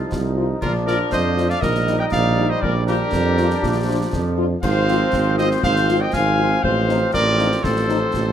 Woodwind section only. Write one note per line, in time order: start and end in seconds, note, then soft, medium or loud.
0.00 0.33 F4 medium
0.62 0.73 F4 medium
0.87 1.10 A#4 loud
1.12 1.47 C5 medium
1.49 1.61 D5 medium
1.62 1.97 A#4 loud
2.00 2.12 D#5 loud
2.12 2.50 D5 medium
2.50 2.61 C5 medium
2.63 2.74 A#4 medium
2.88 4.34 G4 loud
4.63 5.34 C5 loud
5.39 5.62 C5 medium
5.63 5.98 C5 loud
6.01 6.13 D#5 loud
6.14 6.60 F5 loud
6.64 7.10 C5 loud
7.13 7.60 A#4 medium
7.64 8.32 A4 loud